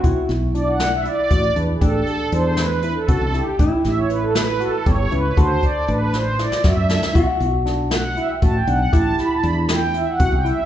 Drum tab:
HH |x-x-x-x-x-x-x-|x-x-x-x-x-x-x-|x-x-x-x-x-x-x-|x-x-x---------|
SD |--o---o-------|------o-----o-|--o---o-------|------o-ooo-oo|
BD |o---------o---|o---------o---|o---------o---|o-o-------o---|

HH |x-x-x-x-x-x-x-|x-x-x-x-x-x-x-|
SD |----o-o-------|--o---o-------|
BD |o---------o---|o---------o---|